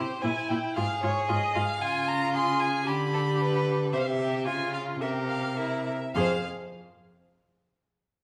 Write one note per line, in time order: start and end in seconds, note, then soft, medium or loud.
0.00 0.23 G4 medium
0.00 0.23 C5 medium
0.22 0.31 A#2 medium
0.22 0.77 E4 soft
0.22 0.32 E4 soft
0.22 0.50 G#5 medium
0.49 0.58 A#2 soft
0.49 0.58 E4 soft
0.49 0.75 G5 medium
0.76 0.85 G#2 medium
0.76 0.84 F4 soft
0.76 1.80 G#4 medium
0.76 1.02 F5 medium
1.03 1.11 G#2 medium
1.03 1.11 F4 soft
1.03 1.29 C#5 medium
1.29 1.38 G#2 medium
1.29 1.37 F4 soft
1.29 1.57 D#5 medium
1.55 1.63 G#2 medium
1.55 1.63 F4 soft
1.55 1.83 F5 medium
1.80 2.89 C#3 medium
1.80 2.36 F4 medium
1.80 2.83 F4 medium
1.80 2.09 G#5 medium
2.08 2.33 A#5 medium
2.34 2.86 G#4 medium
2.34 2.62 C6 medium
2.60 2.89 G#5 medium
2.87 3.95 D3 medium
2.87 2.95 G4 medium
2.87 3.91 G4 medium
2.87 3.67 B5 medium
3.13 3.21 A4 medium
3.40 3.92 B4 medium
3.93 4.49 C3 medium
3.93 4.47 G4 soft
3.93 4.02 C5 medium
3.93 4.01 E5 medium
3.99 4.08 F5 medium
4.06 4.45 E5 medium
4.20 4.47 G4 soft
4.46 5.00 C#3 medium
4.46 5.02 F4 soft
4.46 5.01 F4 soft
4.46 4.73 G#5 medium
4.74 4.82 F5 medium
5.01 5.92 C3 soft
5.01 5.57 G4 soft
5.01 5.56 A#4 soft
5.01 5.09 E5 medium
5.29 5.58 F5 medium
5.57 5.86 E4 soft
5.57 5.93 A#4 soft
5.57 6.14 E5 soft
6.14 6.47 F2 medium
6.14 6.47 G#4 soft
6.14 6.47 C5 soft
6.14 6.47 F5 medium